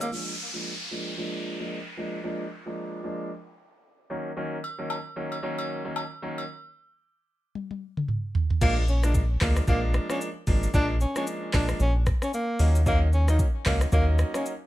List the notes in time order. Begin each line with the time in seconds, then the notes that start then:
0.01 A#3, high agogo, shaker
0.12 F3 G#3 A#3 D4, downlifter
0.54 F3 G#3 A#3 D4
0.91 F3 G#3 A#3 D4
1.18 F3 G#3 A#3 D4
1.60 F3 G#3 A#3 D4
1.97 F3 G#3 A#3 D4
2.24 F3 G#3 A#3 D4
2.66 F3 G#3 A#3 D4
3.04 F3 G#3 A#3 D4
4.10 D#3 F#3 A#3 C#4
4.37 D#3 F#3 A#3 C#4
4.64 high agogo
4.78 D#3 F#3 A#3 C#4
4.90 high agogo, low woodblock
5.16 D#3 F#3 A#3 C#4
5.32 high agogo
5.43 D#3 F#3 A#3 C#4
5.59 high agogo
5.84 D#3 F#3 A#3 C#4
5.96 high agogo, low woodblock
6.22 D#3 F#3 A#3 C#4
6.38 high agogo
7.55 high tom
7.71 high tom
7.97 mid tom
8.08 mid tom
8.35 floor tom
8.50 floor tom
8.61 A#1 F3 G#3 A#3 D4, kick, crash, shaker
8.88 C#4, shaker
9.03 F3 G#3 A#3 D4, cross-stick, shaker
9.14 kick, shaker
9.41 D2 F3 G#3 A#3 D4, kick, cross-stick, clap, open hi-hat, shaker
9.56 cross-stick, shaker
9.67 A#1 F3 G#3 A#3 D4, kick, shaker
9.94 cross-stick, shaker
10.09 F3 G#3 A#3 C#4 D4, cross-stick, shaker
10.21 shaker
10.47 G#1 F3 G#3 A#3 D4, kick, open hi-hat, shaker
10.63 shaker
10.74 A#1 F3 G#3 A#3 D4, kick, shaker
11.01 C#4, shaker
11.16 F3 G#3 A#3 C#4 D4, cross-stick, shaker
11.27 shaker
11.53 A#1 F3 G#3 A#3 D4, kick, cross-stick, clap, open hi-hat, shaker
11.69 cross-stick, shaker
11.80 A#1 C#4, shaker
12.06 kick, cross-stick, shaker
12.22 C#4, cross-stick, shaker
12.33 A#3, shaker
12.59 D#2 F#3 A#3 C#4 D#4, open hi-hat, shaker
12.75 shaker
12.86 F#3 A#3 C#4 D#4, kick, shaker
13.13 C#4, shaker
13.28 F#3 A#3 C#4 D#4, cross-stick, shaker
13.39 kick, shaker
13.66 C#2 F#3 A#3 C#4 D#4, kick, cross-stick, clap, open hi-hat, shaker
13.81 cross-stick, shaker
13.92 D#2 F#3 A#3 C#4 D#4, kick, shaker
14.19 cross-stick, shaker
14.34 F#3 A#3 C#4 D#4, cross-stick, shaker
14.46 shaker